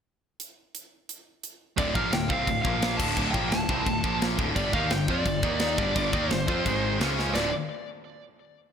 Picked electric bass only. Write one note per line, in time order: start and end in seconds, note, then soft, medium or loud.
1.78 1.94 D1 loud
1.95 2.12 A#1 medium
2.12 2.29 D1 medium
2.30 2.46 C2 medium
2.47 2.64 D1 medium
2.65 2.97 A#1 loud
2.99 3.16 D1 loud
3.17 3.33 D1 loud
3.34 3.51 A#1 medium
3.51 3.68 D1 medium
3.69 3.85 C2 medium
3.86 4.03 D1 medium
4.04 4.36 A#1 loud
4.39 4.55 D1 medium
4.56 4.72 G1 loud
4.73 4.90 D#2 medium
4.90 5.07 G1 medium
5.08 5.24 F2 loud
5.26 5.42 G1 medium
5.43 5.75 D#2 loud
5.78 5.94 G1 loud
5.96 6.12 G1 loud
6.13 6.29 D#2 medium
6.30 6.46 G1 medium
6.48 6.64 F2 medium
6.66 6.98 G#1 medium
7.00 7.32 C#2 medium
7.35 7.51 D1 loud